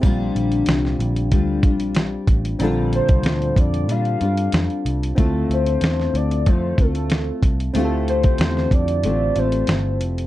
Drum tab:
HH |x-xxx-xxx-xxx-xx|x-xxxxxxxxxxxxxx|x-xxx-xxx-xxx-xx|x-xxx-xxx-xxx-xx|
SD |----oo------o---|----o-------o---|----oo------o---|----oo------o---|
BD |o-------o-o---o-|---o--o---------|o-------o-o---o-|---o--o---------|